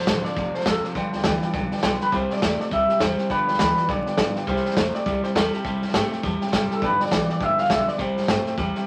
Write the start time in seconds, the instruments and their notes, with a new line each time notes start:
Already playing: clean electric guitar C5
0.01 snare
0.06 upright bass A1, clean electric guitar F2 D3, steel-string acoustic guitar F3 C4 F4 A4, upright piano C5 F5 A5, kick, snare, hi-hat pedal
0.24 steel-string acoustic guitar C4 F4 A4, upright piano C5 F5 A5, clean electric guitar D5, muted upright bass stroke, snare
0.36 upright bass F1, clean electric guitar F2 C3, steel-string acoustic guitar F3 C4 F4 A4, upright piano C5 F5 A5, kick, snare
0.54 steel-string acoustic guitar C4 F4 A4, clean electric guitar C5, upright piano C5 F5 A5, muted upright bass stroke, snare
0.61 snare
0.66 upright bass F1, clean electric guitar F2 C3 A4, steel-string acoustic guitar F3 C4 F4, upright piano C5 F5 A5, kick, snare, hi-hat pedal
0.83 steel-string acoustic guitar C4 F4 A4, clean electric guitar G4, upright piano C5 F5 A5, muted upright bass stroke, snare
0.94 upright bass G1, steel-string acoustic guitar G2 D3 F3 B3 F4 G4, upright piano B4 D5 G5, kick, snare
1.12 upright bass D2, steel-string acoustic guitar F3 B3 F4 G4, upright piano B4 D5 G5, snare
1.18 snare
1.24 upright bass D2, steel-string acoustic guitar G2 D3 F3 B3 F4 G4, clean electric guitar E3, upright piano B4 D5 G5, kick, snare, hi-hat pedal
1.42 steel-string acoustic guitar F3 B3 F4 G4, upright piano B4 D5 G5, snare
1.53 upright bass B1, clean electric guitar G2 D3, steel-string acoustic guitar F3 B3 F4 G4, upright piano B4 D5 G5, kick, snare
1.71 steel-string acoustic guitar F3 B3 F4 G4, upright piano B4 D5 G5, snare
1.77 snare
1.83 upright bass B1, steel-string acoustic guitar G2 D3 F3 B3 F4 G4, upright piano B4 D5 G5, kick, snare, hi-hat pedal
2.00 steel-string acoustic guitar F3 B3 F4 G4, upright piano B4 D5 G5, clean electric guitar B4, muted upright bass stroke, snare
2.12 upright bass C2, steel-string acoustic guitar C3 G3 C4 E4 G4, upright piano C5 E5 G5, clean electric guitar C5, kick, snare
2.29 steel-string acoustic guitar C4 E4 G4, upright piano C5 E5 G5, clean electric guitar D5, muted upright bass stroke, snare
2.37 steel-string acoustic guitar C3, snare
2.41 upright bass E2, steel-string acoustic guitar G3 C4 E4 G4, clean electric guitar A3, upright piano C5 E5 G5, kick, snare, hi-hat pedal
2.58 steel-string acoustic guitar C4 E4 G4, upright piano C5 E5 A5, clean electric guitar D5, snare
2.69 upright bass C2, clean electric guitar C3 E5, steel-string acoustic guitar G3 C4 E4 G4, upright piano C5 E5 G5, kick, snare
2.87 steel-string acoustic guitar C4 E4 G4, upright piano C5 E5 G5, muted upright bass stroke, snare
2.99 upright bass E2, steel-string acoustic guitar C3 G3 C4 E4, upright piano C5 E5 G5, clean electric guitar C5, kick, snare, hi-hat pedal
3.17 steel-string acoustic guitar C4 E4 G4, upright piano C5 E5 G5, snare
3.29 upright bass G1, steel-string acoustic guitar G2 D3 F3 B3 F4 G4, upright piano B4 D5 G5, clean electric guitar B4, kick, snare
3.46 upright bass D2, steel-string acoustic guitar F3 B3 F4 G4, upright piano B4 D5 G5, snare
3.54 snare
3.59 upright bass D2, steel-string acoustic guitar G2 D3 F3 F4, clean electric guitar E3 B4, upright piano B4 D5 G5, kick, snare, hi-hat pedal
3.76 steel-string acoustic guitar F3 B3 F4 G4, upright piano B4 D5 G5, snare
3.87 upright bass B1, clean electric guitar G2 D3 D5, steel-string acoustic guitar F3 B3 G4, upright piano B4 D5 G5, kick, snare
4.06 steel-string acoustic guitar F3 B3 F4 G4, upright piano B4 D5 G5, muted upright bass stroke, snare
4.17 upright bass G1, steel-string acoustic guitar G2 D3 F3 B3 F4 G4, upright piano B4 D5 G5, kick, snare, hi-hat pedal
4.35 steel-string acoustic guitar F3 B3 F4 G4, upright piano B4 D5 G5, muted upright bass stroke, snare
4.47 upright bass C2, steel-string acoustic guitar C3 G3 C4 E4 G4, upright piano C5 E5 G5, clean electric guitar C5, kick, snare
4.56 snare
4.65 steel-string acoustic guitar C4 E4 G4, upright piano C5 E5 G5, muted upright bass stroke, snare
4.71 snare
4.76 upright bass E2, steel-string acoustic guitar C3 G3 C4 E4 G4, clean electric guitar A3, upright piano C5 E5 A5, kick, snare, hi-hat pedal
4.92 steel-string acoustic guitar C4 E4 G4, upright piano C5 E5 G5, clean electric guitar D5, snare
5.05 upright bass C2, clean electric guitar C3, steel-string acoustic guitar G3 C4 E4, upright piano C5 E5 G5, kick, snare
5.23 steel-string acoustic guitar C4 E4 G4, clean electric guitar C5, upright piano C5 E5 G5, muted upright bass stroke, snare
5.35 upright bass E2, steel-string acoustic guitar C3 G3 C4 E4 G4, clean electric guitar A4, upright piano C5 E5 G5, kick, snare, hi-hat pedal
5.53 steel-string acoustic guitar C4 E4 G4, clean electric guitar G4, upright piano C5 E5 A5, snare
5.64 upright bass C2, steel-string acoustic guitar C3 G3 C4 E4 G4, upright piano C5 E5 A5, kick, snare
5.82 upright bass G2, steel-string acoustic guitar E4 G4, upright piano C5 E5 G5, snare
5.88 snare
5.92 upright bass G2, steel-string acoustic guitar C3 G3 C4 E4 G4, clean electric guitar A3, upright piano C5 E5 G5, kick, snare, hi-hat pedal
6.10 steel-string acoustic guitar C4 E4 G4, upright piano C5 E5 G5, muted upright bass stroke, snare
6.22 upright bass E2, clean electric guitar C3, steel-string acoustic guitar G3 C4 E4 G4, upright piano C5 E5, kick, snare
6.26 upright piano A5
6.41 steel-string acoustic guitar C4 E4 G4, upright piano C5 E5 G5, snare
6.47 snare
6.52 upright bass F#1, steel-string acoustic guitar C3 G3 C4 E4 G4, upright piano C5 E5 G5, kick, snare, hi-hat pedal
6.70 steel-string acoustic guitar C4 E4 G4, upright piano C5 E5 G5, muted upright bass stroke, snare
6.74 clean electric guitar A4
6.82 upright bass G1, steel-string acoustic guitar G2 D3 F3 B3 F4 G4, upright piano B4 D5 G5, clean electric guitar B4, kick, snare
6.99 steel-string acoustic guitar F3 B3 F4 G4, upright piano B4 D5 G5, clean electric guitar D5, muted upright bass stroke, snare
7.06 snare
7.11 upright bass B1, steel-string acoustic guitar G2 D3 F3 B3 F4 G4, clean electric guitar E3, upright piano B4 D5 G5, kick, snare, hi-hat pedal
7.28 steel-string acoustic guitar F3 B3 F4 G4, upright piano B4 D5 G5, clean electric guitar D5, muted upright bass stroke, snare
7.40 upright bass G1, clean electric guitar G2 D3 E5, steel-string acoustic guitar F3 B3 F4, upright piano B4 D5 G5, kick, snare
7.57 steel-string acoustic guitar F3 B3 F4 G4, upright piano B4 D5 G5, clean electric guitar F5, snare
7.64 snare
7.69 upright bass B1, steel-string acoustic guitar G2 D3 F3 B3 F4 G4, upright piano B4 D5 G5, clean electric guitar E5, kick, snare, hi-hat pedal
7.87 steel-string acoustic guitar F3 B3 F4 G4, upright piano B4 D5 E5, clean electric guitar D5, muted upright bass stroke, snare
7.98 upright bass C2, steel-string acoustic guitar C3 G3 C4 E4 G4, upright piano C5 E5 G5, clean electric guitar C5, kick, snare
8.16 upright bass G2, steel-string acoustic guitar C4 E4 G4, upright piano C5 E5 G5, snare
8.22 snare
8.28 upright bass G2, steel-string acoustic guitar C3 G3 C4 E4 G4, clean electric guitar A3, upright piano C5 E5 G5, kick, snare, hi-hat pedal
8.46 steel-string acoustic guitar C4 E4 G4, upright piano C5 E5 G5, muted upright bass stroke, snare
8.57 upright bass E2, clean electric guitar C3, steel-string acoustic guitar G3 C4 E4 G4, upright piano C5 E5 G5, kick, snare
8.75 steel-string acoustic guitar C4 E4 G4, upright piano C5 E5 G5, snare